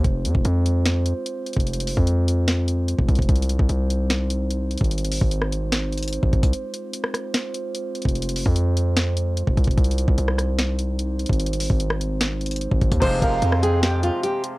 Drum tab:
CC |------------------------------------------------------------------------------------------------|------------------------------------------------------------------------------------------------|------------------------------------------------------------------------------------------------|------------------------------------------------------------------------------------------------|
HH |x-----------x-----------x-----------x-----------x-----------x-----------x-----------x---x---x---|x---x---x---o-----------x-----------x-----------x-----------x-----------x-----------x---x---x---|x---x---x---x-----------x-----------x-----------x-----------x-----------x-----------x---x---x---|x---x---x---o-----------x-----------x-----------x-----------x--x--x--x--x-----------x-----x-----|
SD |------------------------------------------------o-----------------------------------------------|------------------------------------------------o-----------------------------------------------|------------------------------------------------o-----------------------------------------------|------------------------------r-----------------o-----------------------------------------------|
BD |o-----------------o-----------------------------------------------------------------------o-----|------------------o-----------------------------------------------------------o-----o-----o-----|o-----------------o-----------------------------------------------------------------------o-----|------------------o-----------------------------------------------------------o-----o-----o-----|

CC |------------------------------------------------------------------------------------------------|------------------------------------------------------------------------------------------------|------------------------------------------------------------------------------------------------|------------------------------------------------------------------------------------------------|
HH |x-----------x-----------x-----------x-----------x-----------x-----------x-----------x---x---x---|x---x---x---o-----------x-----------x-----------x-----------x-----------x-----------x---x---x---|x---x---x---x-----------x-----------x-----------x-----------x-----------x-----------x---x---x---|x---x---x---o-----------x-----------x-----------x-----------x--x--x--x--x-----------x-----x-----|
SD |------------------------------r-----r-----------o-----------------------------------------------|------------------------------------------------o-----------------------------------------------|------------------------------r-----r-----------o-----------------------------------------------|------------------------------r-----------------o-----------------------------------------------|
BD |------------------------------------------------------------------------------------------o-----|------------------o-----------------------------------------------------------o-----o-----o-----|o-----------------o-----------------------------------------------------------------------o-----|------------------o-----------------------------------------------------------o-----o-----o-----|

CC |x-----------------------------------------------------------------------------------------------|
HH |x-----------x-----------x-----------x-----------x-----------x-----------x-----------x-----------|
SD |------------------------------r-----------------o-----------------------------------------------|
BD |o-----------o-----------------------------------------------------------------------------------|